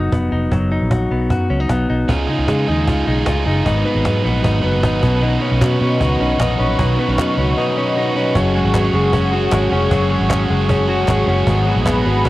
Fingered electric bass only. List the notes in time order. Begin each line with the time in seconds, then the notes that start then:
0.12 F1
0.32 F1
0.52 F#1
0.81 A#1
1.11 B1
1.30 F#2
1.50 C#2
1.70 B1
1.90 B1
2.09 C#2
2.39 C#2
2.48 C#3
2.68 D#2
2.88 C#2
3.07 B1
3.27 C#2
3.46 F#1
3.66 G#1
3.95 G#1
4.05 G#2
4.25 A#1
4.44 G#1
4.64 F#1
4.83 G#1
5.03 B1
5.52 B1
5.61 B2
5.81 B2
6.01 C#2
6.20 B1
6.40 A#1
6.59 A#1
6.79 B1
7.08 B1
7.18 B2
7.37 C#2
8.35 F#1
8.64 G#1
8.94 F#1
9.52 G#1
9.72 F1
9.91 F#1
10.21 G#1
10.50 F#1
11.08 G#1
11.27 F#1
11.47 G#1
11.76 A#1
12.06 G#1